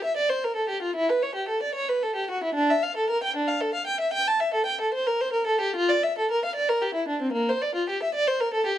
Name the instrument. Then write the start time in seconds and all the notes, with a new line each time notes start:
violin
0.04 E5
0.17 D5
0.29 C5
0.44 A#4
0.56 A4
0.69 G4
0.82 F4
0.95 E4
1.09 B4
1.22 C#5
1.35 G4
1.48 A4
1.63 D5
1.75 C#5
1.89 B4
2.03 A4
2.15 G4
2.31 F#4
2.44 E4
2.54 D4
2.70 E5
2.83 F5
2.96 A4
3.10 A#4
3.23 G5
3.36 D4
3.48 F5
3.61 A4
3.74 F5
3.87 G5
4.00 E5
4.13 G5
4.27 A5
4.40 E5
4.54 A4
4.66 G5
4.81 A4
4.94 C5
5.07 A#4
5.21 C5
5.33 A#4
5.47 A4
5.60 G4
5.76 F4
5.89 D5
6.04 E5
6.18 A4
6.31 A#4
6.45 F5
6.55 D5
6.69 A#4
6.81 G4
6.94 E4
7.08 D4
7.22 C4
7.33 A#3
7.49 C5
7.62 D5
7.75 F4
7.89 G4
8.03 E5
8.14 D5
8.27 C5
8.40 A#4
8.53 A4
8.66 G4